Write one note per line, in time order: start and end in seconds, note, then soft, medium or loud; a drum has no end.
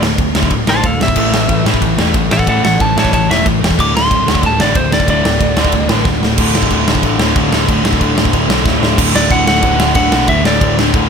0.02 0.18 D1 medium
0.02 0.18 D2 medium
0.02 0.18 A2 medium
0.02 snare loud
0.18 0.34 D1 medium
0.18 0.34 D2 medium
0.18 0.34 A2 medium
0.18 kick loud
0.18 ride medium
0.35 0.50 D2 medium
0.35 0.51 D2 medium
0.35 0.51 A2 loud
0.35 0.51 D3 loud
0.35 snare loud
0.43 kick medium
0.50 0.66 D1 medium
0.50 0.67 D2 medium
0.50 0.67 A2 medium
0.50 kick loud
0.50 ride medium
0.67 0.83 A1 medium
0.67 0.84 D2 medium
0.67 0.84 A2 loud
0.67 0.84 D3 medium
0.67 0.85 C5 loud
0.67 0.85 A5 loud
0.67 snare loud
0.83 0.99 D1 medium
0.83 0.99 D2 medium
0.83 0.99 A2 medium
0.83 1.00 A4 medium
0.83 1.01 F5 medium
0.83 kick loud
0.83 ride medium
0.99 1.16 D1 medium
0.99 1.15 D2 medium
0.99 1.15 A2 medium
0.99 1.65 E5 loud
0.99 snare loud
1.08 kick medium
1.16 1.32 A1 medium
1.16 1.31 A2 medium
1.16 1.32 E3 medium
1.16 1.33 A3 loud
1.16 kick medium
1.16 crash loud
1.32 1.48 A1 medium
1.32 1.48 A2 medium
1.32 1.48 E3 medium
1.32 1.49 A3 loud
1.32 snare loud
1.49 1.65 A1 medium
1.49 1.64 A2 medium
1.49 1.64 E3 medium
1.49 1.65 A3 loud
1.49 kick loud
1.49 ride medium
1.65 1.81 A2 medium
1.65 1.81 E3 medium
1.65 1.82 A3 loud
1.65 snare loud
1.74 kick medium
1.82 1.98 A1 medium
1.82 1.97 A2 medium
1.82 1.97 E3 medium
1.82 1.97 A3 medium
1.82 kick medium
1.82 ride medium
1.98 2.14 E1 medium
1.98 2.14 A2 medium
1.98 2.14 E3 medium
1.98 2.14 A3 medium
1.98 snare loud
2.14 2.30 A1 medium
2.14 2.30 A2 medium
2.14 2.30 E3 medium
2.14 2.30 A3 medium
2.14 kick loud
2.14 ride medium
2.30 2.46 A1 medium
2.30 2.46 A2 medium
2.30 2.47 E3 medium
2.30 2.48 A3 medium
2.30 2.48 A4 medium
2.30 2.48 F#5 medium
2.30 snare loud
2.39 kick medium
2.47 2.63 A1 loud
2.47 2.63 A2 medium
2.47 2.63 E3 loud
2.47 2.64 A3 loud
2.47 2.63 A4 medium
2.47 2.63 F#5 medium
2.47 kick medium
2.47 ride medium
2.63 2.79 A1 medium
2.63 2.79 A2 medium
2.63 2.79 E3 medium
2.63 2.81 A3 medium
2.63 2.79 A4 medium
2.63 2.81 F#5 medium
2.63 snare loud
2.80 2.96 A1 medium
2.80 2.95 A2 medium
2.80 2.95 E3 medium
2.80 2.96 A3 medium
2.80 2.97 C#5 medium
2.80 2.97 A5 medium
2.80 kick loud
2.80 ride medium
2.97 3.12 A2 medium
2.97 3.13 E3 loud
2.97 3.13 A3 loud
2.97 3.12 C#5 medium
2.97 3.13 A5 medium
2.97 snare loud
3.05 kick medium
3.13 3.28 A1 loud
3.13 3.28 A2 medium
3.13 3.29 E3 medium
3.13 3.28 A3 medium
3.13 3.28 C#5 medium
3.13 3.29 A5 loud
3.13 kick loud
3.13 ride medium
3.29 3.45 E1 medium
3.29 3.45 A2 medium
3.29 3.45 E3 medium
3.29 3.46 A3 loud
3.29 3.46 E5 medium
3.29 snare loud
3.46 3.61 A1 medium
3.46 3.60 A2 medium
3.46 3.61 E3 medium
3.46 3.60 A3 medium
3.46 kick loud
3.46 ride medium
3.61 3.77 E1 loud
3.61 3.77 A2 medium
3.61 3.77 E3 medium
3.61 3.77 A3 loud
3.61 snare loud
3.71 kick medium
3.79 3.94 D1 loud
3.79 3.94 D2 medium
3.79 3.94 A2 loud
3.79 3.94 D3 loud
3.79 3.95 D6 loud
3.79 kick medium
3.79 crash medium
3.94 4.10 D1 medium
3.94 4.09 D2 medium
3.94 4.10 A2 medium
3.94 4.11 D3 loud
3.94 4.43 C6 loud
3.94 snare loud
4.11 4.27 D1 medium
4.11 4.26 D2 medium
4.11 4.26 A2 medium
4.11 4.27 D3 loud
4.11 kick loud
4.11 ride medium
4.27 4.42 D2 medium
4.27 4.43 D2 medium
4.27 4.43 A2 loud
4.27 4.43 D3 loud
4.27 snare loud
4.35 kick loud
4.43 4.59 D1 loud
4.43 4.58 D2 medium
4.43 4.58 A2 medium
4.43 4.59 D3 loud
4.43 4.61 A5 loud
4.43 kick loud
4.43 ride medium
4.60 4.75 A1 loud
4.60 4.75 D2 medium
4.60 4.76 A2 medium
4.60 4.76 D3 loud
4.60 4.76 D5 loud
4.60 snare loud
4.75 4.91 D1 medium
4.75 4.91 D2 medium
4.75 4.91 A2 medium
4.75 4.92 D3 medium
4.75 4.92 C5 medium
4.75 kick loud
4.75 ride medium
4.92 5.07 D1 loud
4.92 5.07 D2 medium
4.92 5.07 A2 medium
4.92 5.09 D3 medium
4.92 5.08 D5 medium
4.92 snare loud
5.00 kick medium
5.08 5.23 D1 medium
5.08 5.24 D2 medium
5.08 5.24 A2 loud
5.08 5.25 D3 loud
5.08 6.04 D5 loud
5.08 kick medium
5.08 ride medium
5.24 5.40 D1 loud
5.24 5.39 D2 medium
5.24 5.40 A2 medium
5.24 5.41 D3 medium
5.24 snare loud
5.40 5.56 D1 loud
5.40 5.55 D2 medium
5.40 5.56 A2 medium
5.40 5.56 D3 loud
5.40 kick loud
5.40 ride medium
5.57 5.72 D2 loud
5.57 5.72 D2 medium
5.57 5.72 A2 loud
5.57 5.73 D3 loud
5.57 snare loud
5.65 kick medium
5.72 5.89 D1 loud
5.72 5.88 D2 medium
5.72 5.88 A2 medium
5.72 5.89 D3 loud
5.72 kick medium
5.72 ride medium
5.89 6.05 A1 loud
5.89 6.04 D2 medium
5.89 6.04 A2 loud
5.89 6.06 D3 loud
5.89 snare loud
6.05 6.21 D1 medium
6.05 6.20 D2 medium
6.05 6.20 A2 medium
6.05 6.21 D3 medium
6.05 kick loud
6.05 snare medium
6.22 6.38 D1 loud
6.22 6.37 D2 medium
6.22 6.37 A2 medium
6.22 6.38 D3 loud
6.22 snare loud
6.38 6.52 D1 medium
6.38 6.56 D2 medium
6.38 6.54 A2 loud
6.38 6.55 D3 loud
6.38 kick loud
6.38 crash loud
6.38 crash medium
6.55 6.69 D1 loud
6.55 6.71 D2 medium
6.55 6.71 A2 medium
6.55 6.73 D3 medium
6.55 snare loud
6.63 kick medium
6.70 6.84 D1 medium
6.70 6.88 D2 loud
6.70 6.87 A2 loud
6.70 6.87 D3 loud
6.70 kick medium
6.70 crash medium
6.87 7.01 D1 loud
6.87 7.03 D2 medium
6.87 7.03 A2 medium
6.87 7.04 D3 medium
6.87 snare loud
6.95 kick medium
7.03 7.17 A1 medium
7.03 7.20 D2 medium
7.03 7.18 A2 medium
7.03 7.19 D3 medium
7.03 kick loud
7.03 crash medium
7.19 7.33 D1 loud
7.19 7.34 D2 medium
7.19 7.35 A2 loud
7.19 7.36 D3 loud
7.19 snare loud
7.35 7.49 D1 medium
7.35 7.53 D2 loud
7.35 7.51 A2 loud
7.35 7.52 D3 medium
7.35 kick loud
7.35 crash medium
7.51 7.65 D1 loud
7.51 7.67 D2 medium
7.51 7.68 A2 medium
7.51 7.68 D3 medium
7.51 snare loud
7.68 7.82 D1 medium
7.68 7.84 D2 loud
7.68 7.83 A2 loud
7.68 7.83 D3 loud
7.68 kick loud
7.68 crash medium
7.84 7.98 D1 medium
7.84 7.99 D2 medium
7.84 8.00 A2 medium
7.84 8.00 D3 loud
7.84 snare loud
7.93 kick medium
8.00 8.14 D1 medium
8.00 8.15 D2 loud
8.00 8.14 A2 loud
8.00 8.14 D3 loud
8.00 kick medium
8.00 crash medium
8.15 8.30 D1 medium
8.15 8.31 D2 medium
8.15 8.32 A2 medium
8.15 8.32 D3 loud
8.15 snare loud
8.25 kick loud
8.32 8.47 D1 loud
8.32 8.48 D2 medium
8.32 8.48 A2 medium
8.32 8.47 D3 medium
8.32 kick loud
8.32 crash medium
8.48 8.62 B1 medium
8.48 8.64 D2 medium
8.48 8.65 A2 loud
8.48 8.65 D3 loud
8.48 snare loud
8.65 8.79 D1 medium
8.65 8.82 D2 medium
8.65 8.81 A2 medium
8.65 8.80 D3 medium
8.65 kick loud
8.65 snare medium
8.81 8.95 D1 medium
8.81 8.97 D2 medium
8.81 8.98 A2 medium
8.81 8.97 D3 loud
8.81 snare loud
8.98 9.13 D1 loud
8.98 9.15 D2 medium
8.98 9.14 A2 loud
8.98 9.14 D3 loud
8.98 kick loud
8.98 crash loud
8.98 crash medium
9.14 9.29 D1 medium
9.14 9.30 D2 medium
9.14 9.30 A2 medium
9.14 9.31 D3 medium
9.14 9.32 D5 medium
9.14 snare loud
9.30 9.60 D1 medium
9.30 9.47 D2 medium
9.30 9.46 A2 medium
9.30 9.46 D3 loud
9.30 9.46 F#5 loud
9.30 kick loud
9.30 crash medium
9.47 9.61 D2 medium
9.47 9.61 A2 loud
9.47 9.62 D3 loud
9.47 9.95 F#5 loud
9.47 snare loud
9.62 9.92 D1 loud
9.62 9.79 D2 medium
9.62 9.78 A2 medium
9.62 9.77 D3 medium
9.62 kick loud
9.62 crash medium
9.79 9.93 D2 medium
9.79 9.94 A2 loud
9.79 9.95 D3 loud
9.79 snare loud
9.95 10.10 D1 medium
9.95 10.11 D2 medium
9.95 10.11 A2 medium
9.95 10.10 D3 loud
9.95 10.30 F#5 medium
9.95 kick loud
9.95 crash medium
10.11 10.27 B1 loud
10.11 10.26 D2 medium
10.11 10.27 A2 medium
10.11 10.28 D3 loud
10.11 snare loud
10.28 10.43 D1 loud
10.28 10.45 D2 loud
10.28 10.44 A2 loud
10.28 10.43 D3 loud
10.28 10.46 E5 loud
10.28 kick loud
10.28 crash medium
10.45 10.60 D1 loud
10.45 10.60 D2 medium
10.45 10.61 A2 loud
10.45 10.61 D3 loud
10.45 10.76 D5 medium
10.45 snare loud
10.61 10.90 D1 loud
10.61 10.78 D2 loud
10.61 10.77 A2 loud
10.61 10.77 D3 loud
10.61 kick loud
10.61 crash medium
10.78 10.93 D2 loud
10.78 10.94 A2 loud
10.78 10.95 D3 loud
10.78 snare loud
10.94 11.09 D1 loud
10.94 11.09 D2 medium
10.94 11.09 A2 medium
10.94 11.09 D3 loud
10.94 kick loud
10.94 crash medium